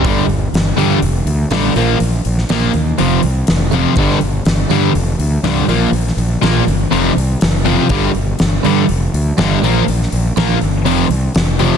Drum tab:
HH |o-o-o-o-o-o-o-o-|o-o-o-o-o-o-o-o-|o-o-o-o-o-o-o-o-|o-o-o-o-o-o-o-o-|
SD |----o-------o---|---oo-------o---|-o--o-------o---|-o--o-------o---|
BD |o---------------|----------------|o---------------|----------------|

HH |o-o-o-o-o-o-o-o-|o-o-o-o-o-o-o-o-|
SD |----o-------o---|-o--o-------o---|
BD |o---------------|----------------|